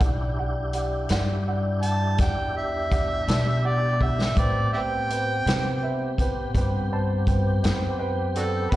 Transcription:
0.00 1.07 B1 medium
0.00 4.32 D4 medium
0.00 4.32 E4 medium
0.00 0.28 G4 medium
0.00 4.32 G4 medium
0.00 0.28 D5 medium
0.00 0.28 F#5 medium
0.00 kick medium
0.00 closed hi-hat medium
0.38 0.65 G4 medium
0.38 0.65 D5 soft
0.38 0.66 F#5 medium
0.73 1.01 G4 medium
0.73 1.01 D5 medium
0.73 1.02 F#5 medium
0.73 closed hi-hat medium
1.09 2.16 G2 medium
1.09 1.38 G4 medium
1.09 1.38 D5 medium
1.09 1.38 F#5 medium
1.09 snare medium
1.09 closed hi-hat medium
1.47 1.74 G4 medium
1.47 1.74 D5 medium
1.47 1.75 F#5 medium
1.81 2.09 G4 medium
1.81 2.10 D5 soft
1.81 2.10 F#5 soft
1.81 2.18 A5 medium
1.81 closed hi-hat soft
2.18 3.25 E2 medium
2.18 2.47 G4 soft
2.18 2.47 D5 soft
2.18 2.48 F#5 medium
2.18 2.55 G5 medium
2.18 kick medium
2.18 snare soft
2.18 closed hi-hat medium
2.54 2.82 G4 soft
2.54 2.82 D5 soft
2.54 3.68 E5 medium
2.54 2.83 G5 medium
2.91 3.18 G4 soft
2.91 3.19 D5 soft
2.91 3.19 F#5 soft
2.91 kick medium
2.91 closed hi-hat soft
3.28 4.33 B2 medium
3.28 3.55 G4 soft
3.28 3.55 D5 soft
3.28 3.56 A5 medium
3.28 snare loud
3.28 closed hi-hat medium
3.65 3.92 G4 medium
3.65 3.92 D5 soft
3.65 4.04 D5 medium
3.65 3.92 F#5 medium
4.01 4.29 G4 soft
4.01 4.40 E5 medium
4.01 4.29 F#5 soft
4.01 kick soft
4.21 snare medium
4.36 5.42 A2 medium
4.36 8.68 B3 medium
4.36 8.68 C4 medium
4.36 8.68 G4 medium
4.36 4.65 B4 medium
4.36 4.66 C5 medium
4.36 4.73 D5 medium
4.36 4.65 G5 medium
4.36 kick medium
4.36 closed hi-hat medium
4.73 5.01 B4 soft
4.73 5.01 C5 soft
4.73 4.79 D5 medium
4.73 4.81 E5 medium
4.73 6.14 G5 medium
4.73 5.01 G5 medium
5.10 5.38 B4 medium
5.10 5.38 C5 soft
5.10 5.38 G5 medium
5.10 closed hi-hat soft
5.46 6.51 C3 medium
5.46 5.73 B4 soft
5.46 5.74 C5 soft
5.46 5.74 G5 medium
5.46 snare loud
5.46 closed hi-hat medium
5.82 6.09 B4 medium
5.82 6.10 C5 soft
5.82 6.10 E5 medium
6.18 6.47 B4 medium
6.18 6.47 C5 medium
6.18 6.47 G5 medium
6.18 kick medium
6.18 closed hi-hat medium
6.55 7.60 G2 medium
6.55 6.83 B4 medium
6.55 6.83 C5 medium
6.55 6.83 G5 medium
6.55 kick medium
6.55 closed hi-hat medium
6.92 7.19 B4 medium
6.92 7.19 C5 medium
6.92 7.19 A5 medium
7.27 7.55 B4 medium
7.27 7.55 C5 soft
7.27 7.55 G5 medium
7.27 kick medium
7.27 closed hi-hat soft
7.63 8.69 F#2 medium
7.63 7.90 B4 medium
7.63 7.91 C5 medium
7.63 7.91 G5 medium
7.63 snare loud
7.63 closed hi-hat medium
7.99 8.26 B4 medium
7.99 8.27 C5 medium
7.99 8.27 G5 medium
8.35 8.43 D4 medium
8.35 8.44 F#4 medium
8.35 8.73 A4 medium
8.35 8.62 B4 soft
8.35 8.63 C5 soft
8.35 8.63 G5 medium
8.35 closed hi-hat medium
8.71 8.76 E2 medium
8.71 8.76 G3 medium
8.71 8.76 D4 medium
8.71 8.76 G4 medium
8.71 8.76 B4 medium
8.71 8.76 F#5 medium
8.71 kick loud
8.71 closed hi-hat medium

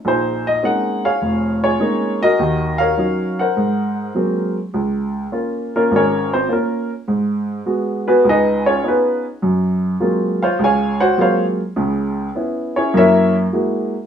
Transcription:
0.05 0.56 A#1 medium
0.05 0.62 D#4 medium
0.05 1.04 G#4 medium
0.05 0.47 C5 medium
0.47 0.65 D#5 medium
0.63 1.04 G#3 soft
0.63 1.04 A#3 soft
0.63 1.05 C4 soft
0.63 1.05 C#4 soft
0.63 1.05 D#4 medium
0.63 1.05 F#5 medium
1.05 1.63 G#4 medium
1.05 1.62 C#5 medium
1.05 1.59 F5 medium
1.22 1.73 F1 medium
1.64 2.37 F4 medium
1.64 2.37 G#4 medium
1.64 2.17 C#5 medium
1.79 2.21 G#3 soft
1.79 2.21 A#3 soft
1.79 2.22 C4 soft
1.79 2.22 C#4 soft
1.79 2.22 D#4 medium
2.23 3.35 F#4 medium
2.23 2.79 A#4 medium
2.23 2.82 D#5 loud
2.39 2.90 D#2 medium
2.39 2.90 D#3 medium
2.78 3.39 A#4 medium
2.78 3.54 C#5 medium
2.78 3.39 F5 loud
2.98 3.39 F#3 soft
2.98 3.39 C#4 soft
2.98 3.39 D#4 medium
3.39 4.52 A#4 medium
3.39 4.52 C5 medium
3.39 4.12 F#5 medium
3.57 4.08 G#2 medium
4.15 4.56 F#3 soft
4.15 4.56 G#3 soft
4.15 4.57 A#3 soft
4.15 4.57 C4 medium
4.74 5.25 C#2 medium
5.32 5.73 A#3 soft
5.32 5.73 C#4 soft
5.32 5.74 F4 medium
5.76 5.92 A#3 medium
5.76 5.93 C#4 medium
5.76 5.93 F4 medium
5.76 5.92 A#4 medium
5.91 6.42 G#1 medium
5.96 6.32 C#4 medium
5.96 6.32 G#4 medium
5.96 6.32 A#4 medium
5.96 6.32 C#5 medium
6.34 6.51 C4 medium
6.34 6.51 C5 medium
6.48 6.52 A#3 medium
6.48 6.52 C#4 soft
6.48 6.51 F4 medium
6.52 6.90 A#3 medium
6.52 6.90 C#4 medium
6.52 6.89 F4 medium
6.52 6.89 A#4 medium
7.08 7.59 G#2 medium
7.66 8.07 G#3 medium
7.66 8.07 B3 soft
7.66 8.07 F#4 medium
8.08 8.26 B3 medium
8.08 8.26 F#4 medium
8.08 8.26 G#4 medium
8.08 8.25 B4 medium
8.25 8.76 C#2 medium
8.29 8.65 D#4 medium
8.29 8.65 G#4 medium
8.29 8.65 B4 medium
8.29 8.65 D#5 loud
8.66 8.82 C#4 medium
8.66 8.82 F4 medium
8.66 8.84 G#4 medium
8.66 8.84 C#5 medium
8.84 8.88 B3 medium
8.84 9.25 C#4 soft
8.84 9.25 D#4 soft
8.84 8.87 F4 medium
8.88 9.25 B3 medium
8.88 9.25 F4 medium
8.88 9.25 G#4 medium
8.88 9.24 B4 medium
9.42 9.93 F#2 medium
10.00 10.42 F#3 medium
10.00 10.42 G#3 soft
10.00 10.42 A#3 soft
10.00 10.42 C4 soft
10.00 10.42 F4 medium
10.42 10.61 F4 medium
10.42 10.61 C5 medium
10.42 10.61 C#5 medium
10.42 10.60 F5 medium
10.59 11.10 C#2 medium
10.64 11.00 G#4 medium
10.64 10.99 C#5 medium
10.64 11.00 F5 medium
10.64 11.00 G#5 medium
11.00 11.19 F#4 medium
11.00 11.18 C5 medium
11.00 11.19 C#5 medium
11.00 11.18 F#5 medium
11.18 11.59 F#3 soft
11.18 11.59 G#3 medium
11.18 11.59 A#3 soft
11.18 11.59 C4 soft
11.18 11.60 F4 medium
11.18 11.44 C5 medium
11.18 11.44 F5 medium
11.22 11.44 C#5 medium
11.76 12.27 C#2 medium
11.76 12.27 C#3 medium
12.35 12.76 B3 soft
12.35 12.75 C#4 soft
12.35 12.75 E4 medium
12.76 12.94 C#4 medium
12.76 12.94 E4 medium
12.76 12.95 G#4 medium
12.76 12.94 C#5 medium
12.94 13.45 F#2 medium
12.94 13.45 A#3 medium
12.94 13.34 E4 medium
12.94 13.34 C#5 medium
12.94 13.34 E5 loud
12.98 13.34 A#4 medium
13.53 13.94 G#3 soft
13.53 13.94 A#3 soft
13.53 13.94 E4 soft
13.53 13.94 F#4 medium

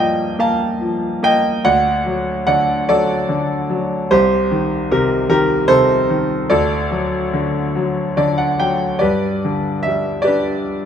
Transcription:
0.00 1.61 G2 soft
0.00 0.79 F3 soft
0.00 0.37 A#3 soft
0.00 1.65 D5 medium
0.00 0.36 D#5 medium
0.00 0.40 F5 medium
0.00 0.41 G5 medium
0.39 1.21 A#3 soft
0.39 1.19 F5 medium
0.39 1.26 A5 medium
0.81 1.61 F3 soft
1.23 1.63 A#3 soft
1.23 1.62 D#5 medium
1.23 1.66 G5 medium
1.65 4.06 D2 medium
1.65 2.43 D5 medium
1.65 2.45 F#5 medium
2.06 2.88 F#3 soft
2.47 3.27 D3 soft
2.47 2.85 D5 medium
2.47 2.89 F#5 medium
2.89 3.68 F#3 medium
2.89 3.76 A4 medium
2.89 3.76 D5 medium
3.29 4.08 D3 soft
3.70 4.09 F#3 medium
4.11 6.46 C2 medium
4.11 4.87 G4 medium
4.11 4.93 C5 medium
4.51 5.28 D#3 soft
4.91 5.67 C3 medium
4.91 5.28 G4 medium
4.91 5.28 A#4 medium
5.29 6.08 D#3 medium
5.29 5.67 G4 medium
5.29 5.70 A#4 medium
5.68 6.47 C3 soft
5.68 6.45 A4 medium
5.68 6.51 C5 loud
6.09 6.49 D#3 soft
6.50 8.97 D2 medium
6.50 8.13 A4 medium
6.50 8.13 D5 medium
6.91 7.74 F#3 medium
7.34 8.16 D3 medium
7.75 8.58 F#3 medium
8.17 8.99 D3 medium
8.17 8.37 D5 medium
8.38 8.57 F#5 medium
8.59 9.00 F#3 medium
8.59 8.98 G5 medium
8.99 10.85 G2 medium
8.99 10.21 G4 soft
8.99 10.21 B4 medium
8.99 9.85 D5 medium
9.45 10.85 D3 soft
9.83 10.25 E5 medium
9.87 10.85 G3 soft
10.22 10.85 G4 medium
10.22 10.85 B4 soft
10.22 10.85 D5 medium
10.27 10.85 D4 soft

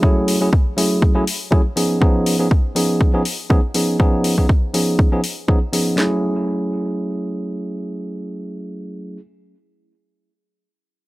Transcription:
0.02 0.38 F#3 medium
0.02 0.38 A3 medium
0.02 0.38 C#4 medium
0.02 0.38 E4 medium
0.02 0.38 G#4 medium
0.02 kick loud
0.28 open hi-hat medium
0.41 0.49 F#3 medium
0.41 0.49 A3 medium
0.41 0.49 C#4 medium
0.41 0.49 E4 medium
0.41 0.49 G#4 medium
0.53 kick loud
0.77 1.12 F#3 medium
0.77 1.12 A3 medium
0.77 1.12 C#4 medium
0.77 1.12 E4 medium
0.77 1.13 G#4 medium
0.77 open hi-hat loud
1.02 kick loud
1.15 1.23 F#3 medium
1.15 1.23 A3 medium
1.15 1.23 C#4 medium
1.15 1.23 E4 medium
1.15 1.23 G#4 medium
1.27 open hi-hat loud
1.51 1.60 F#3 medium
1.51 1.61 A3 medium
1.51 1.61 C#4 medium
1.51 1.61 E4 medium
1.51 1.61 G#4 loud
1.51 kick loud
1.76 1.98 F3 medium
1.76 1.98 B3 medium
1.76 1.99 C#4 medium
1.76 1.99 D#4 medium
1.76 1.99 G#4 medium
1.76 open hi-hat medium
2.01 2.36 F3 medium
2.01 2.36 B3 medium
2.01 2.36 C#4 medium
2.01 2.36 D#4 medium
2.01 2.36 G#4 medium
2.01 kick loud
2.26 open hi-hat medium
2.39 2.47 F3 medium
2.39 2.47 B3 medium
2.39 2.47 C#4 medium
2.39 2.47 D#4 medium
2.39 2.48 G#4 medium
2.51 kick loud
2.75 3.10 F3 medium
2.75 3.11 B3 medium
2.75 3.11 C#4 medium
2.75 3.11 D#4 medium
2.75 3.11 G#4 medium
2.75 open hi-hat medium
3.01 kick loud
3.13 3.21 F3 medium
3.13 3.22 B3 medium
3.13 3.22 C#4 medium
3.13 3.22 D#4 medium
3.13 3.22 G#4 medium
3.25 open hi-hat medium
3.50 3.59 F3 medium
3.50 3.59 B3 medium
3.50 3.59 C#4 medium
3.50 3.59 D#4 medium
3.50 3.60 G#4 loud
3.50 kick loud
3.74 3.97 F3 medium
3.74 3.97 B3 medium
3.74 3.97 C#4 medium
3.74 3.97 D#4 medium
3.74 3.97 G#4 medium
3.74 open hi-hat medium
3.99 4.34 F3 medium
3.99 4.35 B3 medium
3.99 4.35 C#4 medium
3.99 4.35 D#4 medium
3.99 4.35 G#4 medium
3.99 kick loud
4.24 open hi-hat medium
4.38 4.46 F3 medium
4.38 4.46 B3 medium
4.38 4.46 C#4 medium
4.38 4.46 D#4 medium
4.38 4.46 G#4 medium
4.38 kick medium
4.49 kick loud
4.74 5.09 F3 medium
4.74 5.09 B3 medium
4.74 5.09 C#4 medium
4.74 5.09 D#4 medium
4.74 5.09 G#4 medium
4.74 open hi-hat medium
4.99 kick loud
5.12 5.20 F3 medium
5.12 5.20 B3 medium
5.12 5.20 C#4 medium
5.12 5.20 D#4 medium
5.12 5.20 G#4 medium
5.24 open hi-hat medium
5.48 5.57 F3 medium
5.48 5.58 B3 medium
5.48 5.58 C#4 medium
5.48 5.58 D#4 medium
5.48 5.58 G#4 medium
5.48 kick loud
5.73 5.95 F3 medium
5.73 5.95 B3 medium
5.73 5.95 C#4 medium
5.73 5.95 D#4 medium
5.73 5.95 G#4 medium
5.73 open hi-hat medium
5.96 9.17 F#3 medium
5.96 9.17 A3 medium
5.96 9.18 C#4 medium
5.96 9.19 E4 medium
5.96 9.20 G#4 medium
5.96 snare medium

